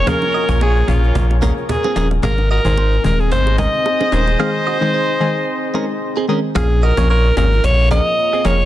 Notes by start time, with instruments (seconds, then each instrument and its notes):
Already playing: ambient pad A#3 F4 G#4 C#5, horn section G#4 A#4 C#5
0.06 synth pluck F3 A#3 C#4 G#4, clean electric guitar G#4 F5, ambient pad A#4, alto saxophone A#4, cajon bass, cajon slap, low conga
0.22 cajon slap, low bongo
0.34 clean electric guitar F#4 D#5, cajon slap
0.48 sub bass A#1, synth pluck F3 A#3 C#4 G#4, clean electric guitar F4 C#5, cajon bass
0.61 clean electric guitar F4 C#5, alto saxophone G#4, high bongo
0.76 cajon slap
0.88 sub bass A#1, synth pluck F3 A#3 C#4 G#4, alto saxophone F4, cajon bass
1.03 cajon slap
1.15 sub bass A#1, cajon bass, cajon slap, low conga
1.30 cajon slap, high bongo
1.42 synth pluck F3 A#3 C#4 G#4, clean electric guitar C#4 A#4, cajon bass, cajon slap, low bongo, low conga
1.57 cajon slap
1.69 alto saxophone G#4, cajon bass, high bongo
1.84 clean electric guitar C4 G#4, cajon slap, low bongo
1.96 sub bass D#1, synth pluck F3 A#3 C#4 G#4, clean electric guitar C#4 A#4, alto saxophone G#4, cajon slap
2.11 cajon slap, high bongo
2.23 sub bass G#1, synth pluck D#3 G#3 C4 G#4, ambient pad C4 D#4, clean electric guitar G#4 F5, alto saxophone A#4, cajon bass, cajon slap, low conga
2.38 cajon slap, low bongo
2.50 clean electric guitar F#4 D#5, alto saxophone A#4, cajon slap
2.65 sub bass G#1, synth pluck D#3 G#3 C4 G#4, clean electric guitar D#4 C5, cajon bass
2.77 clean electric guitar D#4 C5, cajon slap, high bongo
2.92 cajon slap
3.04 sub bass D#1, synth pluck D#3 G#3 C4 G#4, alto saxophone A#4, cajon bass
3.20 alto saxophone G#4, cajon slap
3.31 sub bass G#1, horn section G#4 C5 D#5, alto saxophone C5, cajon bass, cajon slap, low conga
3.46 cajon slap, high bongo
3.58 synth pluck D#3 G#3 C4 G#4, clean electric guitar C#4 A#4, alto saxophone D#5, cajon bass, cajon slap, low bongo, low conga
3.73 cajon slap
3.85 cajon slap, high bongo
4.00 clean electric guitar C4 G#4, cajon slap, low bongo
4.12 sub bass D#1, synth pluck D#3 G#3 C4 G#4, clean electric guitar C#4 A#4, alto saxophone C5, cajon slap
4.27 cajon slap, high bongo
4.39 synth pluck D#3 G#3 C4 G#4, clean electric guitar G#4 F5, alto saxophone C5
4.67 clean electric guitar F#4 D#5
4.81 synth pluck D#3 G#3 C4 G#4, clean electric guitar D#4 C5
4.94 clean electric guitar D#4 C5
5.20 synth pluck D#3 G#3 C4 G#4
5.74 synth pluck D#3 G#3 C4 G#4, clean electric guitar C#4 A#4
6.17 clean electric guitar C4 G#4
6.28 synth pluck D#3 G#3 C4 G#4, clean electric guitar C#4 A#4
6.55 sub bass A#1, synth pluck F3 A#3 C#4 G#4, ambient pad A#3 F4 G#4 A#4 C#5, alto saxophone G#4, clean electric guitar G#4 F5, cajon bass, cajon slap
6.71 cajon slap
6.83 clean electric guitar F#4 D#5, alto saxophone A#4, cajon slap
6.97 sub bass A#1, synth pluck F3 A#3 C#4 G#4, clean electric guitar F4 C#5, cajon bass
7.10 clean electric guitar F4 C#5, alto saxophone A#4, cajon slap
7.24 cajon slap
7.37 sub bass G#1, synth pluck F3 A#3 C#4 G#4, alto saxophone A#4, cajon bass, cajon slap
7.52 cajon slap
7.64 sub bass A#1, alto saxophone C#5, cajon bass, cajon slap
7.79 cajon slap
7.91 synth pluck F3 A#3 C#4 G#4, clean electric guitar C#4 A#4, alto saxophone D#5, cajon bass, cajon slap
8.06 cajon slap
8.18 cajon slap
8.33 clean electric guitar C4 G#4, cajon slap
8.44 sub bass F1, synth pluck F3 A#3 C#4 G#4, clean electric guitar C#4 A#4, alto saxophone C#5, cajon slap
8.60 cajon slap